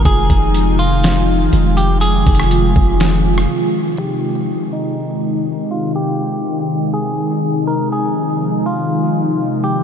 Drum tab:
HH |x-----x-----x-----------x-----------x-----x-----|x-----x-x-x-x-----------x-----------------------|------------------------------------------------|------------------------------------------------|
SD |------------------------o-----------------------|---------r--------------o--------r--------------|------------------------------------------------|------------------------------------------------|
BD |o-----o-----------------------------------------|------o-----------o-----------------------------|------------------------------------------------|------------------------------------------------|

HH |------------------------------------------------|
SD |------------------------------------------------|
BD |------------------------------------------------|